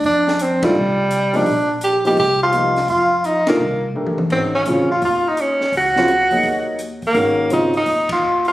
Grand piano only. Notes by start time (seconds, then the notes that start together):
0.62 D#3 A3 D4 F4
1.33 F3 A#3 D#4 G4
2.05 F3 A#3 D#4 G4
2.52 F3 A#3 D#4 G4
3.47 D#3 A3 D4 F4
3.95 A3 D4 G4 A#4
4.31 D#3 G#3 C#4 F#4
4.67 C#3 F#3 C4 F4
5.97 C#3 F#3 C4 F4
6.32 F#3 A#3 D#4 G#4
7.14 D#3 G#3 C#4 F#4
7.50 C#3 F#3 C4 F4